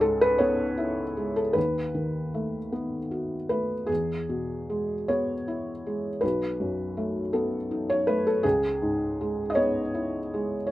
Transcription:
Already playing: C#2 G#2 G#4
0.01 G#3 A4
0.21 B4
0.38 B3 C#5
0.78 E4
1.17 G#3
1.36 A4
1.53 D#2 B4
1.95 D#3
2.34 A3
2.72 B3
3.11 F#4
3.49 A3 B4
3.87 E2 G#4
4.29 B2
4.70 G#3
5.08 B3 C#5
5.48 E4
5.86 G#3
6.21 B1 B4
6.60 F#2
6.97 A3
7.33 B3 A4
7.71 D#4
7.90 C#5
8.07 A3 B4
8.27 A4
8.43 C#2 G#4
8.82 G#2
9.21 G#3
9.50 D#5
9.55 B3 C#5
9.94 E4
10.34 G#3
10.67 C#5

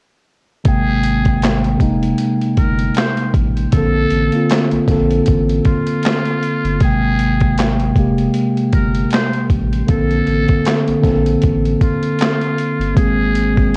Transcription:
0.64 G#1 C3 G#3 A#3 G#4, kick, closed hi-hat
0.68 G5
1.03 closed hi-hat
1.24 C3 G#3 A#3, kick, closed hi-hat
1.29 G5
1.42 snare, clap, closed hi-hat
1.64 closed hi-hat
1.78 F1 C3 G#3 A#3, kick, closed hi-hat
1.83 D#4
2.03 closed hi-hat
2.18 closed hi-hat
2.41 closed hi-hat
2.57 G1 A#4, kick, closed hi-hat
2.79 closed hi-hat
2.95 C5, snare, clap, closed hi-hat
3.17 closed hi-hat
3.34 A1, kick, closed hi-hat
3.57 closed hi-hat
3.72 A#1 D3 A#3 C4 A4, kick, closed hi-hat
3.77 A4
4.10 A1, closed hi-hat
4.31 D3 A#3 C4, closed hi-hat
4.36 F4
4.50 snare, clap, closed hi-hat
4.71 A#1, closed hi-hat
4.87 A#1 D3 A#3 C4, kick, snare, closed hi-hat
4.91 A4
5.11 closed hi-hat
5.26 A1, kick, closed hi-hat
5.49 closed hi-hat
5.65 F4, kick, closed hi-hat
5.87 closed hi-hat
6.03 snare, clap, closed hi-hat
6.25 closed hi-hat
6.43 closed hi-hat
6.64 G1, closed hi-hat
6.80 G#1 C3 G#3 A#3 G#4, kick, closed hi-hat
6.85 G5
7.19 closed hi-hat
7.39 C3 G#3 A#3, kick, closed hi-hat
7.43 G5
7.58 snare, clap, closed hi-hat
7.80 closed hi-hat
7.95 F1 C3 G#3 A#3, kick, closed hi-hat
8.00 G4
8.18 closed hi-hat
8.34 closed hi-hat
8.57 closed hi-hat
8.73 G1 A#4, kick, closed hi-hat
8.95 closed hi-hat
9.11 C5, snare, clap, closed hi-hat
9.33 closed hi-hat
9.50 A1, kick, closed hi-hat
9.73 closed hi-hat
9.86 A#1 D3 A#3 C4 A4, kick, closed hi-hat
9.90 A4
10.11 closed hi-hat
10.27 A1, closed hi-hat
10.46 D3 A#3 C4, kick, closed hi-hat
10.50 A4
10.65 snare, clap, closed hi-hat
10.88 A#1, closed hi-hat
11.00 D3 A#3 C4, kick
11.04 A#1 A4, snare, closed hi-hat
11.26 closed hi-hat
11.42 A1, kick, closed hi-hat
11.65 closed hi-hat
11.81 F4, kick, closed hi-hat
12.03 closed hi-hat
12.19 snare, clap, closed hi-hat
12.41 closed hi-hat
12.58 closed hi-hat
12.80 G1, closed hi-hat
12.95 G#1 G#3 A#3 C4 G#4, kick, closed hi-hat
12.99 G#4
13.35 closed hi-hat
13.55 G#3 A#3 C4, kick, closed hi-hat
13.59 G#4

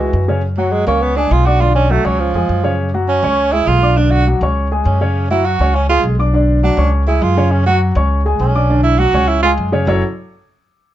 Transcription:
Already playing: G#3 B4
0.00 E3 E4 F#4
0.13 F#2
0.28 C#3 C#4 C#5
0.57 F#3 F#4 F#5
0.72 G#3
0.87 C#2 A#3 C#4 C#5 C#6
1.02 B3
1.16 G#3 D4 G#4 G#5
1.31 B1 F4
1.46 D4 F#4 D5 D6
1.61 D3 D4 F4 D5
1.76 C#4
1.90 F#3 A3 F#4 F#5
2.05 C#2 F#3 C#4 C#5 C#6
2.20 F3
2.34 F2 G#3 G#4 G#5
2.49 F#2
2.64 C#3 C#4 C#5
2.94 F#3 F#4 F#5
3.08 C#4
3.23 C#2 C#4 C#5 C#6
3.52 G#3 E4 G#4 G#5
3.67 B1 F4
3.82 D4 D5 D6
3.97 D3 D4 D5
4.11 F#4
4.27 F#3 F#4 F#5
4.41 C#2 C#4 C#5 C#6
4.71 G#3 G#4 G#5
4.85 F#2 C#4
5.01 C#3 C#4 C#5
5.31 F#3 E4 F#4 F#5
5.45 F#4
5.59 C#2 C#4 C#5 C#6
5.75 C#4
5.90 G#3 F4 G#4 G#5
6.04 B1
6.19 D4 D5 D6
6.33 D3 D4 D5
6.63 F#3 D4 F#4 F#5
6.77 C#2 C#4 C#5 C#6
7.08 G#3 E4 G#4 G#5
7.22 F#2 F4
7.37 C#3 C#4 C#5
7.51 C#4
7.66 F#3 F#4 F#5
7.95 C#2 C#4 C#5 C#6
8.25 G#3 G#4 G#5
8.40 B1 C#4
8.55 D4 D5 D6
8.70 D3 D4 D5
8.83 E4
8.99 F#3 F#4 F#5
9.13 C#2 C#4 C#5 C#6
9.28 E4
9.43 G#3 F4 G#4 G#5
9.58 F#2
9.72 C#3 C#4 C#5
9.87 F#1 F#3 C#4 E4 F#4 A4 C#5

